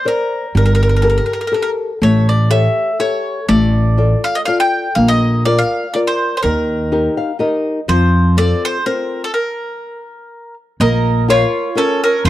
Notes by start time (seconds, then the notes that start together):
0.05 A#4 C5 D5
0.55 G1 G3 A#4
0.66 A#4
0.75 A#4
0.83 A#4
0.89 A#4
0.96 A#4
1.02 G4 A4 A#4
1.10 A#4
1.18 A#4
1.26 A#4
1.33 A#4
1.41 A#4
1.47 A#4
1.52 G4 A4 A#4
1.62 A#4
2.02 A1 A3 C#5
2.29 D5
2.50 G4 A4 C#5 E5
2.99 G4 A4 C#5
3.48 A1 A3 D5
3.97 F4 A4 D5
4.24 F5
4.35 D#5
4.45 F4 A4 D5 F5
4.60 G5
4.95 A#1 A#3 F5
5.08 D#5
5.45 F4 A#4 D5
5.58 F5
5.94 F4 A#4 D5
6.07 C5
6.37 C5
6.43 D#2 D#3 A#4
6.92 D#4 G4 A#4
7.17 F5
7.39 D#4 G4 A#4 D#5
7.88 F2 F3 C5
8.37 C4 F4 A4 D5
8.65 C5
8.86 C4 F4 A#4 C5
9.24 A4
9.34 A#4
10.80 A#1 A#3 A#4 D#5
11.28 F4 A#4 C#5
11.75 C#4 F4 A4 A#4 C#5
12.04 C#4 A#4
12.25 F1 F3 C5